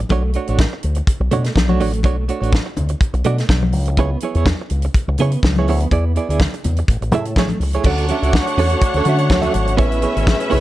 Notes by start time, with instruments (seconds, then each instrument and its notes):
0.00 muted clean electric guitar stroke
0.09 fingered electric bass B1, clean electric guitar A3 D4 F#4 C#5, kick, closed hi-hat, muted conga
0.24 muted clean electric guitar stroke
0.33 clean electric guitar A3 D4 F#4 C#5, closed hi-hat
0.47 fingered electric bass A1, clean electric guitar A3 D4 F#4 C#5, closed hi-hat
0.59 muted clean electric guitar stroke, kick, snare, high conga
0.73 muted clean electric guitar stroke
0.83 fingered electric bass D2, closed hi-hat
0.95 muted clean electric guitar stroke, closed hi-hat
1.07 kick, closed hi-hat
1.20 fingered electric bass B1, muted clean electric guitar stroke
1.31 fingered electric bass B2, clean electric guitar A3 D4 F#4 C#5, closed hi-hat, muted conga, low conga
1.44 muted clean electric guitar stroke, snare, closed hi-hat
1.55 fingered electric bass B1, muted clean electric guitar stroke, kick, snare, high conga
1.68 clean electric guitar A3 D4 F#4 C#5, high conga
1.80 fingered electric bass A1, clean electric guitar A3 D4 F#4 C#5, open hi-hat
1.93 muted clean electric guitar stroke, closed hi-hat
2.03 fingered electric bass B1, clean electric guitar A3 D4 F#4 C#5, kick, closed hi-hat, muted conga
2.17 muted clean electric guitar stroke
2.28 clean electric guitar A3 D4 F#4 C#5, closed hi-hat
2.41 fingered electric bass A1, clean electric guitar A3 D4 F#4 C#5, closed hi-hat
2.52 muted clean electric guitar stroke, kick, snare, high conga
2.66 muted clean electric guitar stroke
2.77 fingered electric bass D2, closed hi-hat, low conga
2.89 muted clean electric guitar stroke, closed hi-hat
3.01 kick, closed hi-hat
3.13 fingered electric bass B1, muted clean electric guitar stroke, closed hi-hat
3.24 fingered electric bass B2, clean electric guitar A3 D4 F#4 D5, closed hi-hat, muted conga
3.38 muted clean electric guitar stroke, snare, closed hi-hat
3.49 fingered electric bass B1, muted clean electric guitar stroke, kick, snare, high conga
3.62 muted clean electric guitar stroke, high conga
3.72 fingered electric bass C#2, open hi-hat
3.85 muted clean electric guitar stroke, closed hi-hat
3.97 clean electric guitar B3 E4 G#4 C#5, kick, closed hi-hat, muted conga
4.11 muted clean electric guitar stroke
4.20 clean electric guitar B3 E4 G#4, closed hi-hat, muted conga
4.24 clean electric guitar C#5
4.35 fingered electric bass E2, clean electric guitar B3 E4 G#4 C#5, closed hi-hat
4.46 kick, snare, high conga
4.62 muted clean electric guitar stroke
4.70 fingered electric bass C#2, closed hi-hat
4.82 muted clean electric guitar stroke, closed hi-hat
4.94 kick, closed hi-hat
5.08 fingered electric bass C#2, muted clean electric guitar stroke
5.18 fingered electric bass C#3, clean electric guitar B3 E4 G#4, closed hi-hat, muted conga, low conga
5.22 clean electric guitar C#5
5.32 muted clean electric guitar stroke, closed hi-hat
5.43 fingered electric bass C#2, muted clean electric guitar stroke, kick, snare, high conga
5.56 clean electric guitar B3 E4 G#4 C#5, high conga
5.68 fingered electric bass D2, clean electric guitar B3 E4 G#4 C#5, open hi-hat
5.80 muted clean electric guitar stroke, closed hi-hat
5.91 fingered electric bass E2, clean electric guitar B3 E4 G#4 D5, kick, closed hi-hat, muted conga
6.06 muted clean electric guitar stroke
6.16 clean electric guitar B3 E4 G#4 D5, closed hi-hat
6.29 fingered electric bass D2, clean electric guitar B3 E4 G#4 D5, closed hi-hat
6.40 muted clean electric guitar stroke, kick, snare, high conga
6.54 muted clean electric guitar stroke, closed hi-hat
6.64 fingered electric bass E2, closed hi-hat, low conga
6.77 muted clean electric guitar stroke, closed hi-hat
6.88 fingered electric bass A1, kick, closed hi-hat
7.01 fingered electric bass A1, muted clean electric guitar stroke, closed hi-hat
7.12 fingered electric bass A2, clean electric guitar A3 E4 G#4 E5, closed hi-hat, muted conga, low conga
7.25 muted clean electric guitar stroke, closed hi-hat
7.36 fingered electric bass A1, clean electric guitar A3 E4 G#4 C#5, kick, snare, high conga
7.49 muted clean electric guitar stroke, closed hi-hat, high conga
7.60 fingered electric bass C#2, muted clean electric guitar stroke, open hi-hat
7.73 clean electric guitar A3 E4 G#4 C#5, closed hi-hat
7.84 fingered electric bass D2, french horn section D3 A3 F#4 C#5, clean electric guitar C#4 F#4 A4 C#5, string section D4 C#5 F#5, kick, crash, muted conga
7.98 closed hi-hat
8.08 clean electric guitar C#4 F#4 A4 E5, closed hi-hat, muted conga
8.22 fingered electric bass C#2, clean electric guitar C#4 F#4 A4 E5, closed hi-hat
8.33 kick, snare, high conga
8.47 muted clean electric guitar stroke, closed hi-hat
8.57 fingered electric bass E2, clean electric guitar C#4 F#4 A4 C#5, open hi-hat
8.70 clean electric guitar F#4 A4 C#5, closed hi-hat
8.74 clean electric guitar C#4
8.82 muted clean electric guitar stroke, kick, closed hi-hat
8.94 fingered electric bass D2, clean electric guitar C#4 F#4 A4 C#5, closed hi-hat
9.05 fingered electric bass D3, clean electric guitar C#4 F#4 A4, closed hi-hat, muted conga
9.09 clean electric guitar E5
9.18 muted clean electric guitar stroke, closed hi-hat
9.30 fingered electric bass D2, muted clean electric guitar stroke, kick, snare, high conga
9.42 clean electric guitar C#4 F#4 A4 E5, closed hi-hat, high conga
9.54 fingered electric bass G#1, muted clean electric guitar stroke, closed hi-hat
9.66 muted clean electric guitar stroke, closed hi-hat
9.77 fingered electric bass A1, french horn section B2 A3 G#4 C#5, clean electric guitar B3 E4 G#4 C#5, string section C#4 B4 E5, kick, closed hi-hat, muted conga
9.92 closed hi-hat
10.02 clean electric guitar B3 E4 G#4 C#5, closed hi-hat, muted conga
10.15 fingered electric bass G#1, clean electric guitar B3 E4 G#4 C#5, closed hi-hat
10.27 muted clean electric guitar stroke, kick, snare, high conga
10.40 muted clean electric guitar stroke, closed hi-hat
10.50 fingered electric bass B1, clean electric guitar B3 E4 G#4 C#5, open hi-hat, low conga